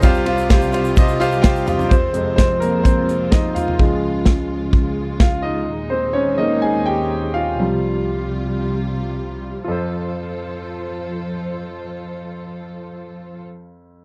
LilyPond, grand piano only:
<<
  \new Staff \with { instrumentName = "Grand piano" } { \time 4/4 \key c \phrygian \tempo 4 = 126 <f' g' c'' f''>8 <f' g' c'' f''>8 <f' g' c'' f''>8 <f' g' c'' f''>8 <f' g' c'' ees''>8 <f' g' c'' f''>8 <f' g' c'' f'' g''>8 <f' g' c'' f''>8 | <c' c''>4 <c' c''>8 <bes bes'>8 <c' c''>4 <ees' ees''>8 <f' f''>8~ | <f' f''>2~ <f' f''>8 r8 <f' f''>8 <ees' ees''>8~ | <ees' ees''>8 <c' c''>8 <des' des''>8 <ees' ees''>8 <aes' aes''>8 <g' g''>4 <f' f''>8~ |
<f' f''>2. r4 | <f' a' c''>1~ | <f' a' c''>1 | }
  \new Staff \with { instrumentName = "Grand piano" } { \clef bass \time 4/4 \key c \phrygian <c, c>1 | r8 <f, c aes>8 r2. | <des f aes>4. r2 r8 | r4. <ees aes bes>4. r4 |
<c f g>8 r2. r8 | f,1~ | f,1 | }
>>